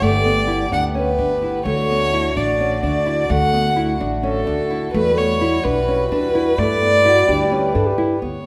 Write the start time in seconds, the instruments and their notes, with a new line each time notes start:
Already playing: harmonium A3 B3 G4
0.02 upright bass G1, nylon-string guitar A3, violin D5
0.25 nylon-string guitar B3
0.48 nylon-string guitar E4
0.72 upright bass D2, nylon-string guitar D4, violin F#5
0.95 nylon-string guitar C#4, violin B4
1.18 upright bass G1, nylon-string guitar D4
1.42 nylon-string guitar E4
1.65 upright bass D2, harmonium D3 F#4, nylon-string guitar A3, violin C#5
1.89 nylon-string guitar B3
2.13 nylon-string guitar E4
2.36 upright bass A1, nylon-string guitar D4, violin D5
2.60 nylon-string guitar C#4
2.83 upright bass D2, nylon-string guitar D4, violin D5
3.06 nylon-string guitar E4
3.29 upright bass D2, nylon-string guitar A3, violin F#5
3.53 nylon-string guitar B3
3.76 nylon-string guitar E4
4.00 upright bass A1, nylon-string guitar D4
4.23 nylon-string guitar C#4, violin A4
4.47 upright bass D2, nylon-string guitar D4
4.71 nylon-string guitar E4
4.94 upright bass E2, harmonium G3 E4, nylon-string guitar A3, violin B4
5.18 nylon-string guitar B3, violin C#5
5.41 nylon-string guitar E4
5.64 upright bass B1, nylon-string guitar D4, violin B4
5.88 nylon-string guitar C#4
6.11 upright bass E2, nylon-string guitar D4, violin B4
6.35 nylon-string guitar E4
6.58 upright bass G2, nylon-string guitar A3, harmonium B4, violin D5
6.82 nylon-string guitar B3
7.05 nylon-string guitar E4, french horn F#4
7.28 upright bass D2, nylon-string guitar D4, french horn G4
7.51 nylon-string guitar C#4
7.75 upright bass G2, nylon-string guitar D4, french horn A4
7.86 french horn G4
7.98 nylon-string guitar E4
8.22 upright bass D2, nylon-string guitar B3, violin C#5